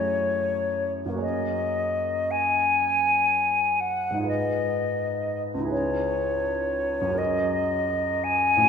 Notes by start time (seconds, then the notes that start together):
Already playing: F#2 A3 E4 G#4 C#5
1.06 F#2 A#3
1.12 F#4
1.16 G#4 C#5
1.22 D#5
2.31 G#5
3.80 F#5
4.11 G#2 D#4
4.18 F4 G#4
4.24 B4 D#5
5.54 C#2 D#4
5.61 E4 G#4
5.68 B4 C#5
7.01 F#2 C#4
7.08 F#4 G#4
7.15 A#4 D#5
8.24 G#5
8.57 A2 C#4
8.63 F#4